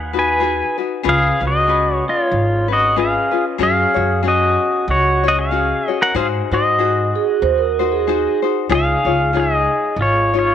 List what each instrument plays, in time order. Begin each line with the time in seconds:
Already playing: upright bass D#2, ukulele D#4 F#4 G#4 B4
0.13 ukulele D#4 F#4 B4
0.19 pedal steel guitar B4 G#5
0.40 ukulele D#4 F#4 G#4 B4
0.78 ukulele D#4 F#4 B4
1.03 upright bass C#2, ukulele C#4 F4 G#4 B4
1.09 pedal steel guitar G#4 F5
1.40 upright bass C#2, ukulele C#4 B4
1.47 pedal steel guitar F#4 D#5
1.67 ukulele C#4 G#4 B4
1.96 pedal steel guitar C#5
2.09 pedal steel guitar F4 C#5
2.31 upright bass G#1
2.68 ukulele C#4 B4
2.72 pedal steel guitar F#4 D#5
2.96 ukulele C#4 F4 G#4 B4, pedal steel guitar G#4 F5
3.31 ukulele C#4 F4 B4
3.58 upright bass F#2, ukulele C#4 F#4 G#4 C#5
3.63 pedal steel guitar G#4 F5
3.94 upright bass F#2, ukulele C#4 F#4 C#5
4.23 ukulele C#4 F#4 G#4 C#5
4.28 pedal steel guitar F#4 D#5
4.88 upright bass C#2, pedal steel guitar F#4 C#5
5.24 ukulele C#4 F#4 C#5
5.28 pedal steel guitar F#4 D#5
5.39 pedal steel guitar G#4 F5
5.51 ukulele C#4 F#4 G#4 C#5
5.88 ukulele C#4 F#4 C#5, pedal steel guitar D#5
6.02 pedal steel guitar A#4 F#5
6.15 upright bass G#2, ukulele D#4 F#4 G#4 C5, pedal steel guitar G#4 F5
6.51 upright bass G#2, ukulele D#4 F#4 C5, pedal steel guitar F#4 D#5
6.78 ukulele D#4 F#4 G#4 C5
7.15 vibraphone G#4
7.42 upright bass D#2, vibraphone C5
7.58 vibraphone A#4
7.79 ukulele D#4 F#4 C5
7.92 vibraphone G#4
8.07 ukulele D#4 F#4 G#4 C5
8.42 ukulele D#4 F#4 C5
8.69 upright bass C#2, ukulele D#4 F4 G#4 C#5, pedal steel guitar G#4
8.75 pedal steel guitar F5
9.05 upright bass C#2, ukulele D#4 F4 C#5
9.33 ukulele D#4 F4 G#4 C#5, pedal steel guitar G#4
9.40 pedal steel guitar D#5
9.96 upright bass G#1
10.01 pedal steel guitar F4 C#5
10.34 ukulele D#4 F4 C#5
10.39 pedal steel guitar F4 C#5